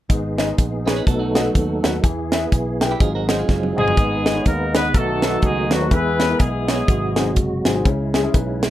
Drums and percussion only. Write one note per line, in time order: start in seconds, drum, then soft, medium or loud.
0.10 kick loud
0.10 closed hi-hat medium
0.38 snare medium
0.38 closed hi-hat medium
0.58 kick loud
0.58 closed hi-hat loud
0.87 snare loud
0.87 closed hi-hat medium
1.07 kick loud
1.07 closed hi-hat medium
1.35 snare loud
1.35 closed hi-hat medium
1.55 kick medium
1.55 closed hi-hat medium
1.84 snare loud
1.84 closed hi-hat medium
2.04 kick loud
2.04 closed hi-hat medium
2.32 snare loud
2.32 closed hi-hat medium
2.52 kick loud
2.52 closed hi-hat loud
2.81 snare loud
2.81 closed hi-hat medium
3.00 kick loud
3.00 closed hi-hat medium
3.29 snare loud
3.29 closed hi-hat medium
3.49 kick medium
3.49 snare medium
3.63 high tom medium
3.78 mid tom medium
3.88 floor tom medium
3.97 kick loud
3.97 closed hi-hat medium
4.26 snare medium
4.26 closed hi-hat medium
4.45 kick medium
4.45 closed hi-hat loud
4.74 snare loud
4.74 closed hi-hat medium
4.94 kick loud
4.94 closed hi-hat medium
5.22 snare loud
5.22 closed hi-hat medium
5.42 kick medium
5.42 closed hi-hat medium
5.71 snare loud
5.71 closed hi-hat medium
5.91 kick loud
5.91 closed hi-hat medium
6.20 snare medium
6.20 closed hi-hat medium
6.39 kick loud
6.39 closed hi-hat loud
6.68 snare loud
6.68 closed hi-hat medium
6.88 kick loud
6.88 closed hi-hat medium
7.16 snare loud
7.16 closed hi-hat medium
7.36 kick medium
7.36 closed hi-hat medium
7.65 snare loud
7.65 closed hi-hat medium
7.85 kick loud
7.85 closed hi-hat medium
8.14 snare medium
8.14 closed hi-hat medium
8.34 kick loud
8.34 closed hi-hat medium
8.62 snare loud
8.62 closed hi-hat medium